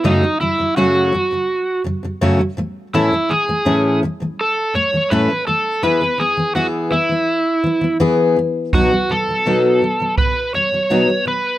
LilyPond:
<<
  \new Staff \with { instrumentName = "Electric slide guitar" } { \time 4/4 \key b \mixolydian \tempo 4 = 83 dis'8 e'8 fis'4. r4. | e'8 gis'4 r8 a'8 cis''8 b'8 a'8 | b'8 gis'8 fis'8 e'4. r4 | fis'8 a'4. b'8 cis''4 b'8 | }
  \new Staff \with { instrumentName = "Steel-string acoustic guitar" } { \clef bass \time 4/4 \key b \mixolydian <fis, cis fis a cis' fis'>16 <fis, cis fis>16 <fis, cis fis>16 <fis, cis fis>16 <fis, cis fis a cis' fis'>8 <fis, cis fis>16 <fis, cis fis>8 r16 <fis, cis fis>16 <fis, cis fis>16 <fis, cis fis a cis' fis'>16 <fis, cis fis>16 <a, e a>8 | <a, e a cis' e' a'>16 <a, e a>16 <a, e a>16 <a, e a>16 <a, e a cis' e'>8 <a, e a>16 <a, e a>8 r16 <a, e a>16 <a, e a>16 <a, e a cis' e' a'>16 <a, e a>16 <a, e a>8 | <e b e' gis'>16 <e b>16 <e b>16 <e b>16 <e b e' gis'>8 <e b>16 <e b>8 r16 <e b>16 <e b>16 <e b e' gis'>8 <e b>8 | <b, fis b dis' fis'>16 <b, fis>16 <b, fis>16 <b, fis>16 <b, fis b dis' fis'>8 <b, fis>16 <b, fis>8 r16 <b, fis>16 <b, fis>16 <b, fis b dis' fis'>16 <b, fis>16 <b, fis>8 | }
  \new DrumStaff \with { instrumentName = "Drums" } \drummode { \time 4/4 r4 r4 r4 r4 | r4 r4 r4 r4 | r4 r4 r4 r4 | bd4 r4 bd4 r4 | }
>>